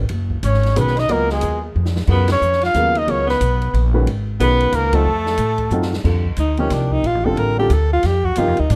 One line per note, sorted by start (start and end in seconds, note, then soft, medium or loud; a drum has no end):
0.09 0.42 F#1 medium
0.09 ride medium
0.30 kick medium
0.43 0.75 G#1 medium
0.43 0.78 C#4 medium
0.43 0.80 C#5 medium
0.43 hi-hat pedal medium
0.43 ride medium
0.54 snare soft
0.63 snare soft
0.63 ride soft
0.76 1.08 B1 medium
0.76 0.94 D#3 medium
0.76 0.94 G#3 medium
0.76 0.98 B3 medium
0.76 0.95 C#4 medium
0.76 0.95 F#4 medium
0.76 0.95 B4 medium
0.76 1.01 B4 medium
0.76 hi-hat pedal medium
0.76 ride medium
0.87 snare soft
0.97 1.11 D#4 medium
0.97 1.14 D#5 medium
0.97 snare soft
0.97 ride soft
1.09 1.42 C#2 medium
1.09 1.59 F#3 medium
1.09 1.29 A#3 medium
1.09 1.58 B3 medium
1.09 1.59 F4 medium
1.09 1.59 A#4 soft
1.09 1.31 A#4 medium
1.09 1.59 D#5 medium
1.09 ride medium
1.29 1.61 G#3 medium
1.29 1.62 G#4 medium
1.29 snare soft
1.41 1.75 D#2 medium
1.41 hi-hat pedal medium
1.41 ride medium
1.76 2.07 F2 medium
1.85 snare medium
1.96 snare medium
2.07 2.40 F#2 medium
2.07 2.27 C#3 medium
2.07 2.27 F#3 soft
2.07 2.27 B3 soft
2.07 2.29 B3 medium
2.07 2.27 F4 soft
2.07 2.27 A#4 medium
2.07 kick medium
2.07 crash medium
2.13 2.30 B4 medium
2.28 snare medium
2.28 ride medium
2.32 2.61 C#4 medium
2.32 2.61 C#5 loud
2.42 2.74 F2 medium
2.42 hi-hat pedal soft
2.53 snare soft
2.61 2.97 F4 medium
2.61 3.00 F5 loud
2.61 snare soft
2.61 ride soft
2.74 3.07 D#2 medium
2.74 2.93 C#3 medium
2.74 2.93 F#3 medium
2.74 2.94 B3 medium
2.74 2.94 F4 medium
2.74 2.94 A#4 medium
2.74 hi-hat pedal soft
2.74 ride medium
2.95 3.09 D#4 medium
2.95 3.12 D#5 medium
2.95 ride soft
3.07 3.40 C#2 medium
3.07 3.26 C#3 medium
3.07 3.26 F#3 medium
3.07 3.26 B3 soft
3.07 3.26 C#4 medium
3.07 3.27 F4 soft
3.07 3.27 A#4 medium
3.07 3.29 C#5 medium
3.07 ride medium
3.26 3.90 B3 medium
3.26 3.91 B4 medium
3.26 snare medium
3.41 3.73 B1 medium
3.41 hi-hat pedal medium
3.41 ride medium
3.62 ride soft
3.74 4.06 A#1 medium
3.74 ride medium
3.94 4.06 D#3 medium
3.94 4.06 G#3 medium
3.94 4.06 C#4 medium
3.94 4.06 F#4 medium
3.94 4.06 B4 medium
4.06 4.39 G#1 medium
4.06 ride medium
4.40 4.72 B1 medium
4.40 4.90 D#3 medium
4.40 4.90 G#3 soft
4.40 4.75 B3 loud
4.40 4.90 C#4 medium
4.40 4.90 F#4 medium
4.40 4.90 B4 medium
4.40 4.77 B4 loud
4.40 hi-hat pedal medium
4.40 ride medium
4.60 ride soft
4.72 5.05 C#2 medium
4.72 4.96 A#3 medium
4.72 4.97 A#4 medium
4.72 hi-hat pedal medium
4.72 ride medium
4.93 5.05 F#3 medium
4.93 5.93 A3 medium
4.93 5.05 C4 medium
4.93 5.05 D#4 medium
4.93 5.05 F4 medium
4.93 5.94 A4 medium
4.93 5.05 C5 medium
4.93 kick medium
4.93 ride medium
5.06 5.38 F2 medium
5.26 snare medium
5.37 5.70 A2 medium
5.37 hi-hat pedal medium
5.37 ride medium
5.58 kick soft
5.58 ride soft
5.70 6.04 F#2 medium
5.70 5.90 F#3 medium
5.70 5.91 C4 medium
5.70 5.91 D#4 medium
5.70 5.91 F4 medium
5.70 5.91 A4 medium
5.70 hi-hat pedal medium
5.82 snare medium
5.94 snare medium
6.04 6.37 F2 medium
6.04 6.23 D3 soft
6.04 6.23 G3 soft
6.04 6.23 C4 soft
6.04 6.23 F4 soft
6.04 6.24 A4 medium
6.04 kick medium
6.04 crash medium
6.25 kick soft
6.36 6.69 D2 medium
6.36 6.58 D#4 medium
6.36 hi-hat pedal medium
6.36 ride medium
6.57 7.02 C3 medium
6.57 7.02 F3 medium
6.57 7.02 A#3 medium
6.57 6.74 C#4 medium
6.57 7.02 D#4 medium
6.57 7.02 G4 medium
6.57 ride soft
6.70 7.03 C2 medium
6.70 6.94 D4 medium
6.70 snare soft
6.70 hi-hat pedal soft
6.70 ride medium
6.91 7.08 D#4 medium
6.91 kick soft
7.04 7.15 A#1 medium
7.04 7.26 F4 medium
7.04 ride medium
7.15 7.25 A1 medium
7.25 7.35 F1 medium
7.25 7.56 D3 medium
7.25 7.56 G3 medium
7.25 7.57 C4 medium
7.25 7.57 F4 medium
7.25 7.41 A4 medium
7.25 7.57 A4 medium
7.25 kick medium
7.36 7.69 A1 medium
7.36 7.58 A#4 medium
7.36 ride medium
7.58 7.70 D3 medium
7.58 7.70 G3 medium
7.58 7.70 C4 medium
7.58 7.70 F4 medium
7.58 7.74 G4 medium
7.58 7.70 A4 medium
7.70 8.02 D2 medium
7.70 7.92 A4 medium
7.70 hi-hat pedal medium
7.70 ride medium
7.93 8.07 F4 medium
8.03 8.36 F2 medium
8.03 8.26 G4 medium
8.03 snare soft
8.03 ride medium
8.24 8.40 F#4 medium
8.24 kick medium
8.35 8.48 G2 medium
8.35 8.55 C3 medium
8.35 8.56 F3 medium
8.35 8.56 A#3 medium
8.35 8.56 D#4 medium
8.35 8.61 F4 medium
8.35 8.56 G4 medium
8.35 hi-hat pedal medium
8.35 ride medium
8.48 8.59 F2 medium
8.57 8.69 D2 medium
8.57 8.74 D#4 medium
8.57 ride soft
8.70 8.76 A2 medium
8.70 8.76 D4 medium
8.70 hi-hat pedal medium
8.70 ride medium